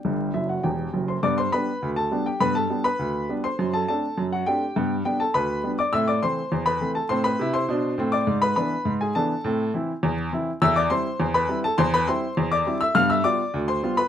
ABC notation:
X:1
M:2/4
L:1/16
Q:1/4=102
K:G
V:1 name="Upright piano"
[Gdg]2 [Ee] [Ff] [Gg]3 [cc'] | [dd'] [cc'] [Bb]3 [Aa]2 [Gg] | [Bb] [Aa]2 [Bb]4 [cc']- | [cc'] [Aa] [Aa]3 [Ff] [Gg]2- |
[Gg]2 [Gg] [Aa] [Bb]3 [dd'] | [ee'] [dd'] [cc']3 [Bb]2 [Aa] | [cc'] [Bb]2 [cc']4 [dd']- | [dd'] [Bb] [Bb]3 [^G^g] [Aa]2- |
[Aa]2 z6 | [K:C] [ee'] [dd'] [cc']3 [Bb]2 [Aa] | [cc'] [Bb] [cc']3 [dd']2 [ee'] | [ff'] [ee'] [dd']3 [cc']2 [Bb] |]
V:2 name="Upright piano"
[G,,,G,,]2 [F,,,F,,]2 [E,,,E,,]2 [F,,,F,,]2 | [G,,B,]2 [G,B,D]2 D,,2 [G,B,D]2 | [G,,B,]2 [G,B,D]2 D,,2 [G,B,D]2 | F,,2 [A,CD]2 F,,2 [A,CD]2 |
[G,,B,]2 [G,B,D]2 D,,2 [G,B,D]2 | [A,,C]2 [E,A,C]2 E,,2 [E,A,C]2 | [A,,C]2 [C,E]2 [B,,D]2 [A,,C]2 | ^G,,2 [E,B,D]2 G,,2 [E,B,D]2 |
[A,,C]2 [E,CE]2 E,,2 [E,CE]2 | [K:C] E,,2 [G,CE]2 E,,2 [G,CE]2 | E,,2 [G,CE]2 E,,2 [G,CE]2 | [G,,B,]2 [G,B,F]2 D,,2 [G,B,F]2 |]